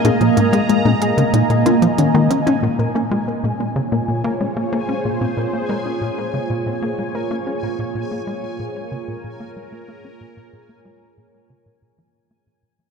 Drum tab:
HH |xxxxx-xxxxxxx-xx|----------------|----------------|----------------|
T1 |o-o--o-o--o-o--o|----------------|----------------|----------------|

HH |----------------|
T1 |----------------|